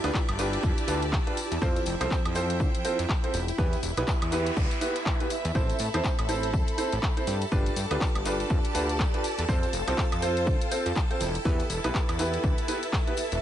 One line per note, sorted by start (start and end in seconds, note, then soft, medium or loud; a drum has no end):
0.00 0.11 D2 loud
0.00 5.56 E4 medium
0.00 2.31 G4 medium
0.00 0.31 A4 medium
0.00 2.31 D5 medium
0.00 0.31 E5 medium
0.00 5.56 E5 medium
0.00 2.32 A5 medium
0.00 0.31 B5 medium
0.04 0.19 D4 medium
0.04 0.19 F4 medium
0.04 0.19 G4 medium
0.04 0.19 B4 loud
0.04 closed hi-hat medium
0.04 tambourine soft
0.04 high woodblock medium
0.14 kick loud
0.14 clap loud
0.14 tambourine soft
0.29 0.58 G1 medium
0.29 closed hi-hat medium
0.29 high woodblock medium
0.39 0.85 D4 medium
0.39 0.85 F4 medium
0.39 0.85 G4 medium
0.39 0.85 B4 loud
0.39 clap soft
0.39 open hi-hat medium
0.39 tambourine medium
0.53 closed hi-hat medium
0.53 tambourine soft
0.63 0.73 F2 medium
0.63 kick loud
0.63 tambourine medium
0.78 closed hi-hat medium
0.78 tambourine soft
0.88 1.19 D2 medium
0.88 1.00 D4 medium
0.88 1.00 F4 medium
0.88 1.00 G4 medium
0.88 1.00 B4 medium
0.88 open hi-hat loud
0.88 tambourine medium
1.02 closed hi-hat medium
1.02 tambourine soft
1.13 kick loud
1.13 clap loud
1.13 tambourine medium
1.27 1.35 D4 medium
1.27 1.35 F4 medium
1.27 1.35 G4 medium
1.27 1.35 B4 medium
1.27 closed hi-hat soft
1.37 open hi-hat medium
1.37 tambourine medium
1.51 1.58 E2 medium
1.51 closed hi-hat medium
1.51 tambourine soft
1.62 1.79 F2 loud
1.62 3.34 F3 medium
1.62 1.79 C4 loud
1.62 1.79 F4 medium
1.62 1.79 A4 medium
1.62 1.79 C5 loud
1.62 kick loud
1.62 tambourine soft
1.71 3.34 C5 medium
1.71 4.24 G5 medium
1.76 closed hi-hat soft
1.76 tambourine soft
1.86 1.96 F1 medium
1.86 open hi-hat loud
1.86 tambourine medium
2.01 2.07 C2 loud
2.01 2.15 C4 medium
2.01 2.15 F4 medium
2.01 2.15 A4 medium
2.01 2.15 C5 loud
2.01 closed hi-hat medium
2.01 tambourine soft
2.01 high woodblock medium
2.11 kick loud
2.11 clap loud
2.11 tambourine medium
2.25 2.61 F2 medium
2.25 closed hi-hat medium
2.25 high woodblock medium
2.35 2.82 C4 medium
2.35 2.82 F4 medium
2.35 2.82 A4 medium
2.35 2.82 C5 loud
2.35 open hi-hat medium
2.35 tambourine loud
2.50 closed hi-hat medium
2.50 tambourine soft
2.60 2.69 D3 loud
2.60 kick loud
2.60 tambourine medium
2.74 closed hi-hat medium
2.74 tambourine soft
2.85 2.96 C4 medium
2.85 2.96 F4 medium
2.85 2.96 A4 medium
2.85 2.96 C5 medium
2.85 open hi-hat loud
2.85 tambourine medium
2.99 3.06 F2 medium
2.99 closed hi-hat medium
2.99 tambourine soft
3.09 kick loud
3.09 clap loud
3.09 tambourine medium
3.24 3.32 C4 medium
3.24 3.32 F4 medium
3.24 3.32 A4 medium
3.24 3.32 C5 medium
3.24 closed hi-hat soft
3.34 3.51 E1 loud
3.34 6.25 E4 medium
3.34 open hi-hat medium
3.34 tambourine medium
3.48 closed hi-hat medium
3.48 tambourine soft
3.56 3.76 E2 loud
3.56 3.76 B3 loud
3.56 3.76 E4 medium
3.56 3.76 G4 loud
3.56 6.25 B4 medium
3.56 3.76 B4 loud
3.56 kick loud
3.56 tambourine soft
3.56 noise sweep medium
3.65 8.18 E5 medium
3.73 closed hi-hat soft
3.73 tambourine soft
3.83 3.92 E1 medium
3.83 open hi-hat loud
3.83 tambourine medium
3.97 4.04 B1 loud
3.97 4.12 B3 medium
3.97 4.12 E4 medium
3.97 4.12 G4 medium
3.97 4.12 B4 medium
3.97 closed hi-hat medium
3.97 tambourine soft
3.97 high woodblock medium
4.07 kick loud
4.07 clap loud
4.07 tambourine medium
4.22 4.51 E2 medium
4.22 closed hi-hat medium
4.22 tambourine soft
4.22 high woodblock medium
4.32 4.79 B3 medium
4.32 4.79 E4 medium
4.32 4.79 G4 medium
4.32 4.79 B4 loud
4.32 clap soft
4.32 open hi-hat medium
4.32 tambourine medium
4.46 closed hi-hat medium
4.46 tambourine soft
4.57 4.66 D2 medium
4.57 kick loud
4.57 tambourine medium
4.71 closed hi-hat medium
4.71 tambourine soft
4.81 4.93 B3 medium
4.81 4.93 E4 medium
4.81 4.93 G4 medium
4.81 4.93 B4 medium
4.81 open hi-hat loud
4.81 tambourine medium
4.96 closed hi-hat medium
4.96 tambourine soft
5.06 kick loud
5.06 clap loud
5.06 tambourine soft
5.20 5.29 B3 medium
5.20 5.29 E4 medium
5.20 5.29 G4 medium
5.20 5.29 B4 medium
5.20 closed hi-hat soft
5.20 tambourine soft
5.30 open hi-hat medium
5.30 tambourine medium
5.45 5.51 E2 loud
5.45 closed hi-hat medium
5.45 tambourine soft
5.55 5.73 A1 loud
5.55 5.73 C4 loud
5.55 5.73 E4 medium
5.55 13.42 A4 medium
5.55 5.73 A4 medium
5.55 8.18 A4 medium
5.55 5.73 C5 loud
5.55 13.42 A5 medium
5.55 kick loud
5.55 tambourine medium
5.70 8.18 B5 medium
5.70 closed hi-hat soft
5.70 tambourine soft
5.79 5.89 A2 medium
5.79 open hi-hat loud
5.79 tambourine loud
5.94 6.01 E2 loud
5.94 6.09 C4 medium
5.94 6.09 E4 medium
5.94 6.09 A4 medium
5.94 6.09 C5 medium
5.94 closed hi-hat medium
5.94 tambourine soft
5.94 high woodblock medium
6.04 kick loud
6.04 clap loud
6.04 tambourine medium
6.19 6.55 A1 medium
6.19 closed hi-hat medium
6.19 high woodblock medium
6.29 6.76 C4 medium
6.29 6.76 E4 medium
6.29 6.76 A4 medium
6.29 6.76 C5 medium
6.29 open hi-hat medium
6.29 tambourine loud
6.43 closed hi-hat medium
6.43 tambourine soft
6.53 6.63 E2 loud
6.53 kick loud
6.53 tambourine medium
6.68 closed hi-hat medium
6.68 tambourine soft
6.78 6.90 C4 medium
6.78 6.90 E4 medium
6.78 6.90 A4 medium
6.78 6.90 C5 medium
6.78 open hi-hat loud
6.78 tambourine medium
6.92 6.99 A1 medium
6.92 closed hi-hat medium
6.92 tambourine soft
7.03 kick loud
7.03 clap loud
7.03 tambourine medium
7.17 7.25 C4 medium
7.17 7.25 E4 medium
7.17 7.25 A4 medium
7.17 7.25 C5 medium
7.17 closed hi-hat soft
7.27 7.45 G2 loud
7.27 10.18 G4 medium
7.27 open hi-hat medium
7.27 tambourine medium
7.41 closed hi-hat medium
7.41 tambourine soft
7.52 7.69 G1 loud
7.52 7.69 D4 loud
7.52 7.69 F4 medium
7.52 7.69 G4 medium
7.52 7.69 B4 loud
7.52 kick loud
7.52 tambourine medium
7.61 10.10 D5 medium
7.66 closed hi-hat soft
7.66 tambourine soft
7.76 7.86 G2 medium
7.76 open hi-hat loud
7.76 tambourine loud
7.83 10.18 A5 medium
7.91 7.97 D2 loud
7.91 8.05 D4 medium
7.91 8.05 F4 medium
7.91 8.05 G4 medium
7.91 8.05 B4 medium
7.91 closed hi-hat medium
7.91 tambourine soft
7.91 high woodblock medium
8.01 kick loud
8.01 clap loud
8.01 tambourine medium
8.15 8.44 G1 medium
8.15 closed hi-hat medium
8.15 high woodblock medium
8.25 8.72 D4 medium
8.25 8.72 F4 medium
8.25 8.72 G4 medium
8.25 8.72 B4 medium
8.25 clap soft
8.25 open hi-hat loud
8.25 tambourine loud
8.40 closed hi-hat medium
8.40 tambourine soft
8.50 8.60 F2 medium
8.50 kick loud
8.50 tambourine medium
8.65 closed hi-hat medium
8.65 tambourine soft
8.75 9.06 D2 medium
8.75 8.87 D4 medium
8.75 8.87 F4 medium
8.75 8.87 G4 medium
8.75 8.87 B4 medium
8.75 open hi-hat loud
8.75 tambourine loud
8.89 closed hi-hat medium
8.89 tambourine soft
8.99 kick loud
8.99 clap loud
8.99 tambourine medium
9.14 9.22 D4 medium
9.14 9.22 F4 medium
9.14 9.22 G4 medium
9.14 9.22 B4 medium
9.14 closed hi-hat soft
9.24 open hi-hat loud
9.24 tambourine medium
9.38 9.45 E2 medium
9.38 closed hi-hat medium
9.38 tambourine soft
9.48 9.66 F2 loud
9.48 9.66 C4 loud
9.48 9.66 F4 medium
9.48 11.21 F4 medium
9.48 9.66 A4 medium
9.48 9.66 C5 loud
9.48 kick loud
9.48 tambourine medium
9.63 closed hi-hat soft
9.63 tambourine soft
9.71 9.82 F1 medium
9.71 11.21 C5 medium
9.71 open hi-hat loud
9.71 tambourine loud
9.88 9.94 C2 loud
9.88 10.02 C4 medium
9.88 10.02 F4 medium
9.88 10.02 A4 medium
9.88 10.02 C5 medium
9.88 closed hi-hat medium
9.88 tambourine soft
9.88 high woodblock medium
9.97 kick loud
9.97 clap loud
9.97 tambourine medium
10.12 10.48 F2 medium
10.12 12.11 G5 medium
10.12 closed hi-hat medium
10.12 high woodblock medium
10.22 10.69 C4 medium
10.22 10.69 F4 medium
10.22 10.69 A4 medium
10.22 10.69 C5 loud
10.22 open hi-hat loud
10.22 tambourine medium
10.37 closed hi-hat medium
10.37 tambourine soft
10.47 10.56 D3 medium
10.47 kick loud
10.47 tambourine medium
10.61 closed hi-hat medium
10.61 tambourine soft
10.71 10.83 C4 medium
10.71 10.83 F4 medium
10.71 10.83 A4 medium
10.71 10.83 C5 medium
10.71 open hi-hat loud
10.71 tambourine loud
10.86 10.93 F2 medium
10.86 closed hi-hat medium
10.86 tambourine soft
10.96 kick loud
10.96 clap loud
10.96 tambourine medium
11.10 11.19 C4 medium
11.10 11.19 F4 medium
11.10 11.19 A4 medium
11.10 11.19 C5 medium
11.10 closed hi-hat soft
11.20 11.38 E1 loud
11.20 13.42 E4 medium
11.20 open hi-hat loud
11.20 tambourine medium
11.34 closed hi-hat medium
11.34 tambourine soft
11.39 13.42 E5 medium
11.45 11.63 E2 loud
11.45 11.63 B3 loud
11.45 11.63 E4 medium
11.45 11.63 G4 medium
11.45 11.63 B4 loud
11.45 13.42 B4 medium
11.45 kick loud
11.45 tambourine medium
11.60 closed hi-hat soft
11.60 tambourine soft
11.70 11.79 E1 medium
11.70 open hi-hat loud
11.70 tambourine loud
11.84 11.91 B1 loud
11.84 11.99 B3 medium
11.84 11.99 E4 medium
11.84 11.99 G4 medium
11.84 11.99 B4 loud
11.84 closed hi-hat medium
11.84 tambourine soft
11.84 high woodblock medium
11.94 kick loud
11.94 clap loud
11.94 tambourine medium
12.09 12.38 E2 medium
12.09 closed hi-hat medium
12.09 tambourine soft
12.09 high woodblock medium
12.19 12.66 B3 medium
12.19 12.66 E4 medium
12.19 12.66 G4 medium
12.19 12.66 B4 medium
12.19 clap soft
12.19 open hi-hat loud
12.19 tambourine loud
12.33 closed hi-hat medium
12.33 tambourine soft
12.43 12.53 D2 medium
12.43 kick loud
12.43 tambourine medium
12.58 closed hi-hat medium
12.58 tambourine soft
12.68 12.80 B3 medium
12.68 12.80 E4 medium
12.68 12.80 G4 medium
12.68 12.80 B4 medium
12.68 open hi-hat loud
12.68 tambourine loud
12.83 closed hi-hat medium
12.83 tambourine soft
12.93 kick loud
12.93 clap loud
12.93 tambourine medium
13.07 13.16 B3 medium
13.07 13.16 E4 medium
13.07 13.16 G4 medium
13.07 13.16 B4 medium
13.07 closed hi-hat soft
13.17 open hi-hat loud
13.17 tambourine loud
13.31 13.38 E1 medium
13.31 closed hi-hat medium
13.31 tambourine soft